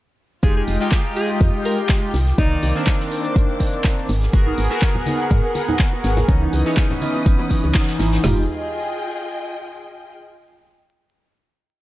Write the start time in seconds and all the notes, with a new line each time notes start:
0.43 F1 G#3 D#4 F4 G4 G#4 G5 D#6, kick, closed hi-hat, shaker
0.56 G#4
0.67 F1, closed hi-hat, open hi-hat, shaker
0.80 G#3 D#4 F4 G4, snare, closed hi-hat, shaker
0.85 G#3
0.92 D#5, kick, snare, clap, closed hi-hat, shaker
1.16 G#4, closed hi-hat, open hi-hat, shaker
1.20 G5
1.29 closed hi-hat, shaker
1.41 F2, kick, closed hi-hat, shaker
1.65 A#4, closed hi-hat, open hi-hat, shaker
1.77 closed hi-hat, shaker
1.89 kick, snare, clap, closed hi-hat, shaker
2.13 C2 D#3 A#4 D6, snare, closed hi-hat, open hi-hat, shaker
2.27 snare, closed hi-hat, shaker
2.38 C2 D#3 A#3 C4 D#4 D5, kick, closed hi-hat, shaker
2.58 C5
2.62 C2, closed hi-hat, open hi-hat, shaker
2.75 D#3 A#3 C4 D4, snare, closed hi-hat, shaker
2.86 kick, snare, clap, closed hi-hat, shaker
2.96 D6, snare
3.11 closed hi-hat, open hi-hat, shaker
3.24 closed hi-hat, shaker
3.36 G1, kick, closed hi-hat, shaker
3.48 closed hi-hat
3.60 kick, closed hi-hat, open hi-hat, shaker
3.73 closed hi-hat, shaker
3.84 kick, snare, clap, closed hi-hat, shaker
3.97 closed hi-hat
4.09 G#1 B3 F#5, closed hi-hat, open hi-hat, shaker
4.17 G#4
4.22 snare, closed hi-hat, shaker
4.33 G#1 B3 F#4 G#4 A#4, kick, closed hi-hat, high bongo, shaker
4.47 D#4
4.53 F#5
4.58 G#1, closed hi-hat, open hi-hat, shaker
4.70 B3 F#4 G#4 A#4, snare, closed hi-hat, high bongo, shaker
4.81 kick, snare, clap, closed hi-hat, shaker
4.95 high bongo, low conga
5.06 D#4, closed hi-hat, open hi-hat, high conga, shaker
5.20 closed hi-hat, shaker
5.31 G#2, kick, closed hi-hat, high bongo, shaker
5.44 A#4
5.55 closed hi-hat, open hi-hat, high bongo, high conga, shaker
5.68 D#4, closed hi-hat, low conga, shaker
5.79 kick, snare, clap, closed hi-hat, shaker
5.93 high bongo
6.04 G#1 G#4, snare, closed hi-hat, open hi-hat, shaker
6.17 snare, closed hi-hat, high bongo, low conga, shaker
6.28 C#2 E3 B3 C#4 D#4 B4 D#6, kick, closed hi-hat, shaker
6.42 D#4
6.52 C#2 D#6, closed hi-hat, open hi-hat, high bongo, shaker
6.57 E3
6.65 E3 B3 C#4 D#4 G#4 B5, snare, closed hi-hat, shaker
6.77 kick, snare, clap, closed hi-hat, high bongo, shaker
6.90 snare, low conga
7.01 D#4, closed hi-hat, open hi-hat, high conga, shaker
7.14 closed hi-hat, high bongo, shaker
7.26 G#1, kick, closed hi-hat, shaker
7.39 B4, closed hi-hat, high bongo
7.50 kick, closed hi-hat, open hi-hat, high conga, shaker
7.64 C#2 C#5, closed hi-hat, shaker
7.74 D#4, kick, snare, clap, closed hi-hat, high bongo, shaker
7.88 snare, closed hi-hat
7.99 G#1 E4, snare, closed hi-hat, open hi-hat, high bongo, shaker
8.12 snare, closed hi-hat, shaker
8.22 F1 G#3 D#4 F4 G4 D#5 G#5, snare, floor tom, open hi-hat
8.31 G#4
8.39 D#5
8.46 G5